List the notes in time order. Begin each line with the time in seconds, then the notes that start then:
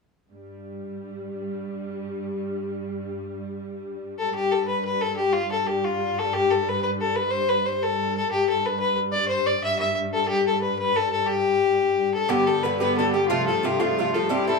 0.31 G2 G3
4.19 A4
4.32 G2 G3 G4
4.52 A4
4.68 B4
4.84 B4
5.01 A4
5.16 G4
5.33 F4
5.52 A4
5.67 G4
5.84 F4
6.19 A4
6.33 G4
6.51 A4
6.69 B4
6.83 B4
7.01 A4
7.16 B4
7.31 C5
7.49 B4
7.66 C5
7.83 A4
8.17 A4
8.29 G2 G3 G4
8.49 A4
8.66 B4
8.80 B4
9.13 D5
9.28 C5
9.47 D5
9.63 E5
9.79 E5
10.13 A4
10.28 G4
10.47 A4
10.62 B4
10.79 B4
10.96 A4
11.12 A4
11.27 G4
12.14 A4
12.29 G2 D3 G3 B3 G4
12.47 D3 G4 A4
12.63 G2 D3 B3 G4 B4
12.79 G2 D3 B3 G4 B4
12.97 G2 D3 B3 G4 A4
13.13 D3 B3 G4
13.28 C3 F3 A3 F4
13.47 F3 A3 F4 A4
13.63 C3 F3 A3 F4 G4
13.80 C3 F3 A3 F4
13.98 C3 F3 A3 F4
14.14 F3 A3 F4 A4
14.25 A4
14.29 G2 G3 C4 E4 G4
14.48 G3 C4 E4 A4